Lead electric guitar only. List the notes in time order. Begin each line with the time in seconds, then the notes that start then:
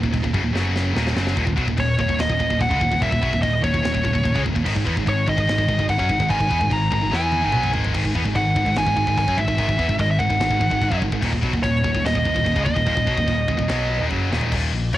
1.80 C#5
2.00 C#5
2.21 D#5
2.61 F#5
3.02 E5
3.42 D#5
3.64 C#5
5.09 C#5
5.29 D#5
5.90 F#5
6.30 G#5
6.72 A#5
6.93 A#5
7.14 G#5
8.36 F#5
8.78 G#5
9.18 G#5
9.37 E5
10.01 D#5
10.11 E5
10.19 F#5
11.63 C#5
12.06 D#5
12.65 D#5
14.94 D#5